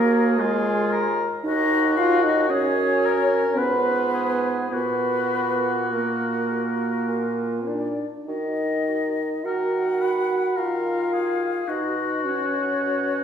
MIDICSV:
0, 0, Header, 1, 6, 480
1, 0, Start_track
1, 0, Key_signature, -6, "minor"
1, 0, Tempo, 1063830
1, 650, Time_signature, 3, 2, 24, 8
1, 1610, Tempo, 1151631
1, 2090, Tempo, 1183432
1, 4010, Tempo, 1113173
1, 5641, End_track
2, 0, Start_track
2, 0, Title_t, "Flute"
2, 0, Program_c, 0, 73
2, 0, Note_on_c, 0, 70, 91
2, 176, Note_on_c, 0, 68, 91
2, 182, Note_off_c, 0, 70, 0
2, 531, Note_off_c, 0, 68, 0
2, 653, Note_on_c, 0, 75, 112
2, 890, Note_on_c, 0, 77, 95
2, 897, Note_off_c, 0, 75, 0
2, 1009, Note_off_c, 0, 77, 0
2, 1012, Note_on_c, 0, 75, 83
2, 1129, Note_on_c, 0, 73, 101
2, 1136, Note_off_c, 0, 75, 0
2, 1611, Note_on_c, 0, 71, 94
2, 1617, Note_off_c, 0, 73, 0
2, 2088, Note_off_c, 0, 71, 0
2, 2090, Note_on_c, 0, 71, 93
2, 2579, Note_on_c, 0, 70, 67
2, 2585, Note_off_c, 0, 71, 0
2, 3288, Note_on_c, 0, 74, 63
2, 3294, Note_off_c, 0, 70, 0
2, 3447, Note_off_c, 0, 74, 0
2, 3530, Note_on_c, 0, 75, 85
2, 4009, Note_on_c, 0, 78, 78
2, 4016, Note_off_c, 0, 75, 0
2, 4496, Note_on_c, 0, 77, 77
2, 4503, Note_off_c, 0, 78, 0
2, 4978, Note_on_c, 0, 75, 74
2, 4984, Note_off_c, 0, 77, 0
2, 5215, Note_off_c, 0, 75, 0
2, 5221, Note_on_c, 0, 73, 71
2, 5641, Note_off_c, 0, 73, 0
2, 5641, End_track
3, 0, Start_track
3, 0, Title_t, "Oboe"
3, 0, Program_c, 1, 68
3, 0, Note_on_c, 1, 68, 72
3, 179, Note_on_c, 1, 65, 73
3, 186, Note_off_c, 1, 68, 0
3, 411, Note_off_c, 1, 65, 0
3, 413, Note_on_c, 1, 70, 80
3, 564, Note_off_c, 1, 70, 0
3, 660, Note_on_c, 1, 66, 86
3, 1130, Note_on_c, 1, 68, 85
3, 1136, Note_off_c, 1, 66, 0
3, 1374, Note_on_c, 1, 70, 72
3, 1380, Note_off_c, 1, 68, 0
3, 1614, Note_on_c, 1, 71, 83
3, 1620, Note_off_c, 1, 70, 0
3, 1844, Note_off_c, 1, 71, 0
3, 1846, Note_on_c, 1, 68, 68
3, 2094, Note_on_c, 1, 66, 72
3, 2101, Note_off_c, 1, 68, 0
3, 3292, Note_off_c, 1, 66, 0
3, 4013, Note_on_c, 1, 70, 58
3, 4250, Note_on_c, 1, 71, 62
3, 4256, Note_off_c, 1, 70, 0
3, 4488, Note_on_c, 1, 70, 56
3, 4495, Note_off_c, 1, 71, 0
3, 4731, Note_off_c, 1, 70, 0
3, 4734, Note_on_c, 1, 68, 60
3, 4970, Note_on_c, 1, 66, 65
3, 4977, Note_off_c, 1, 68, 0
3, 5641, Note_off_c, 1, 66, 0
3, 5641, End_track
4, 0, Start_track
4, 0, Title_t, "Clarinet"
4, 0, Program_c, 2, 71
4, 0, Note_on_c, 2, 66, 81
4, 175, Note_on_c, 2, 65, 77
4, 182, Note_off_c, 2, 66, 0
4, 576, Note_off_c, 2, 65, 0
4, 653, Note_on_c, 2, 66, 83
4, 1611, Note_on_c, 2, 65, 76
4, 1617, Note_off_c, 2, 66, 0
4, 2090, Note_off_c, 2, 65, 0
4, 2095, Note_on_c, 2, 66, 65
4, 2568, Note_off_c, 2, 66, 0
4, 2576, Note_on_c, 2, 70, 72
4, 2822, Note_on_c, 2, 66, 63
4, 2828, Note_off_c, 2, 70, 0
4, 3051, Note_on_c, 2, 65, 65
4, 3057, Note_off_c, 2, 66, 0
4, 3289, Note_on_c, 2, 63, 51
4, 3295, Note_off_c, 2, 65, 0
4, 3461, Note_off_c, 2, 63, 0
4, 3530, Note_on_c, 2, 66, 53
4, 3595, Note_off_c, 2, 66, 0
4, 3773, Note_on_c, 2, 66, 42
4, 3837, Note_off_c, 2, 66, 0
4, 4007, Note_on_c, 2, 66, 45
4, 4076, Note_off_c, 2, 66, 0
4, 4255, Note_on_c, 2, 66, 46
4, 4324, Note_off_c, 2, 66, 0
4, 4493, Note_on_c, 2, 66, 48
4, 4562, Note_off_c, 2, 66, 0
4, 4738, Note_on_c, 2, 66, 46
4, 4807, Note_off_c, 2, 66, 0
4, 4977, Note_on_c, 2, 66, 48
4, 5046, Note_off_c, 2, 66, 0
4, 5216, Note_on_c, 2, 66, 43
4, 5285, Note_off_c, 2, 66, 0
4, 5456, Note_on_c, 2, 66, 47
4, 5525, Note_off_c, 2, 66, 0
4, 5641, End_track
5, 0, Start_track
5, 0, Title_t, "French horn"
5, 0, Program_c, 3, 60
5, 0, Note_on_c, 3, 58, 99
5, 176, Note_on_c, 3, 56, 111
5, 183, Note_off_c, 3, 58, 0
5, 531, Note_off_c, 3, 56, 0
5, 652, Note_on_c, 3, 63, 108
5, 894, Note_on_c, 3, 65, 108
5, 900, Note_off_c, 3, 63, 0
5, 1011, Note_on_c, 3, 63, 105
5, 1017, Note_off_c, 3, 65, 0
5, 1125, Note_off_c, 3, 63, 0
5, 1128, Note_on_c, 3, 61, 103
5, 1612, Note_on_c, 3, 59, 98
5, 1618, Note_off_c, 3, 61, 0
5, 2087, Note_off_c, 3, 59, 0
5, 2090, Note_on_c, 3, 59, 96
5, 2573, Note_on_c, 3, 58, 69
5, 2579, Note_off_c, 3, 59, 0
5, 3287, Note_on_c, 3, 62, 69
5, 3293, Note_off_c, 3, 58, 0
5, 3446, Note_off_c, 3, 62, 0
5, 3530, Note_on_c, 3, 63, 73
5, 4008, Note_on_c, 3, 66, 75
5, 4014, Note_off_c, 3, 63, 0
5, 4490, Note_on_c, 3, 65, 83
5, 4497, Note_off_c, 3, 66, 0
5, 4967, Note_off_c, 3, 65, 0
5, 4970, Note_on_c, 3, 63, 75
5, 5214, Note_on_c, 3, 61, 78
5, 5221, Note_off_c, 3, 63, 0
5, 5641, Note_off_c, 3, 61, 0
5, 5641, End_track
6, 0, Start_track
6, 0, Title_t, "Bassoon"
6, 0, Program_c, 4, 70
6, 0, Note_on_c, 4, 39, 67
6, 576, Note_off_c, 4, 39, 0
6, 653, Note_on_c, 4, 39, 74
6, 1130, Note_on_c, 4, 42, 76
6, 1137, Note_off_c, 4, 39, 0
6, 1610, Note_on_c, 4, 44, 72
6, 1616, Note_off_c, 4, 42, 0
6, 2088, Note_off_c, 4, 44, 0
6, 2090, Note_on_c, 4, 46, 62
6, 3033, Note_off_c, 4, 46, 0
6, 3050, Note_on_c, 4, 46, 52
6, 3386, Note_off_c, 4, 46, 0
6, 3536, Note_on_c, 4, 51, 60
6, 3955, Note_off_c, 4, 51, 0
6, 4009, Note_on_c, 4, 51, 58
6, 4435, Note_off_c, 4, 51, 0
6, 4492, Note_on_c, 4, 51, 56
6, 4916, Note_off_c, 4, 51, 0
6, 4976, Note_on_c, 4, 47, 57
6, 5396, Note_off_c, 4, 47, 0
6, 5454, Note_on_c, 4, 47, 57
6, 5641, Note_off_c, 4, 47, 0
6, 5641, End_track
0, 0, End_of_file